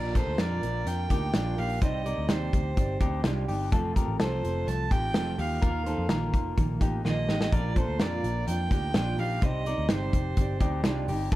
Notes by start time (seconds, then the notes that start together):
Already playing: A#1 A#2 F3 A#3 D4 F4 A#4 D5
0.13 A#3 D4 F4 A4 A#4 C5, kick, closed hi-hat
0.27 D2
0.37 F2 A#2 F3 A#3 D4 F4 A#4 D5, snare, closed hi-hat
0.61 A#1 A#3 D4 F4 A#4, closed hi-hat
0.84 F2 A#3 D4 F4 A#4 G5, closed hi-hat
1.09 D2 A#3 D4 D#4 F4 G4 A#4, kick, closed hi-hat
1.33 A#1 A#2 F3 A#3 D4 F4 A#4, snare, closed hi-hat
1.56 A#1 A#3 D4 D#4 F4 G4 A#4 F5, open hi-hat
1.81 C2 C3 G3 C4 D#4 G4 C5 D5 D#5, kick, closed hi-hat
2.04 C4 D#4 G4 A#4 D5, closed hi-hat
2.18 D2
2.28 D#2 C3 G3 C4 D#4 G4 C5 D5, snare, closed hi-hat
2.52 D2 C4 D#4 G4 D5, kick, closed hi-hat
2.76 G1 C4 D#4 G4 D5, kick, closed hi-hat
3.01 D2 C4 D#4 G4, kick, closed hi-hat
3.24 C2 C3 G3 C4 D4 D#4 F4 G4 D5, snare, closed hi-hat
3.47 G1 C4 D#4 G4 D5, open hi-hat
3.72 F1 F3 A3 C4 F4 A4, kick, closed hi-hat
3.96 A3 C4 F4 G4 A#4, kick, closed hi-hat
4.08 A1
4.20 C2 F3 A3 C4 F4 A4 C5, snare, closed hi-hat
4.43 F1 A3 C4 F4, closed hi-hat
4.67 C2 F3 A3 C4 F4 A5, closed hi-hat
4.90 A1 A3 C4 D#4 F4 G4 G5, kick, closed hi-hat
5.14 F1 F3 A3 C4 F4, snare, closed hi-hat
5.38 D#2 A#3 D#4 F4 G4 F5, open hi-hat
5.61 D#2 D#3 A#3 D#4 F4 A#4, kick, closed hi-hat
5.84 A#3 D#4 F4 A4 C5, closed hi-hat
5.98 F2
6.09 A#1 D#3 A#3 D#4 F4 A#4, snare, closed hi-hat
6.32 F1 A#3 D#4 F4, kick, closed hi-hat
6.56 A#1 D#3 A#3 D#4 F4, kick, closed hi-hat
6.80 A1 A#3 D#4 F4 G4, kick, closed hi-hat
7.04 A#1 D#3 A#3 D#4 F4 D#5, snare
7.28 A1 A#3 D#4 F4 G4, snare
7.41 snare
7.52 A#1 A#2 F3 A#3 D4 F4 A#4 D5, kick, closed hi-hat
7.75 A#3 D4 F4 A4 C5, kick, closed hi-hat
7.88 D2
7.99 F2 A#2 F3 A#3 D4 F4 A#4 D5, snare, closed hi-hat
8.23 A#1 A#3 D4 F4, closed hi-hat
8.46 F2 F3 A#3 D4 F4 G5, closed hi-hat
8.70 D2 A#3 D4 D#4 F4 G4, kick, closed hi-hat
8.94 A#1 A#2 F3 A#3 D4 F4, snare, closed hi-hat
9.18 A#1 A#3 D4 D#4 F4 G4 F5, open hi-hat
9.41 C2 C3 G3 C4 D#4 G4 C5 D5 D#5, kick, closed hi-hat
9.65 C4 D#4 G4 A#4 D5, closed hi-hat
9.78 D2
9.88 G1 C3 G3 C4 D#4 G4 C5 D5, snare, closed hi-hat
10.13 F1 C4 D#4 G4 D5, kick, closed hi-hat
10.37 G1 C4 D#4 G4 D5, kick, closed hi-hat
10.60 D2 C4 D#4 G4 D5, kick, closed hi-hat
10.84 C2 C3 G3 C4 D4 D#4 F4 G4 D5, snare, closed hi-hat
11.08 G1 C4 D#4 G4 D5, open hi-hat
11.32 F1 F3 C4, kick, closed hi-hat